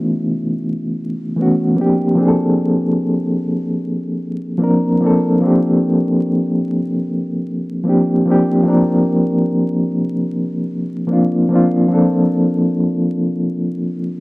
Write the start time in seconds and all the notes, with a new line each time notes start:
Already playing: E3 A3 B3 C#4 D#4 E4 F#4
1.36 E3 A3 B3
1.41 C#4 F#4
1.75 F3 A#3 C4
1.80 D4 G4
2.15 F3 A#3 C4
2.20 D4 G#4
2.28 A4
4.58 F3 A#3 C4
4.62 D4 A#4
5.01 F3 A#3 C4
5.05 D4 A4
5.41 F3 A#3 C4
5.45 D4 G4
7.84 F3 A#3 C4
7.88 D4 G4
8.25 F3 A#3 C4
8.30 D4 G4
8.64 F3 A#3 C4
8.68 D4 A#4
11.07 F3 A#3 C4
11.11 D4 F4
11.49 F3 A#3 C4
11.54 D4 F4
11.88 F3 A#3 C4
11.93 D4 A4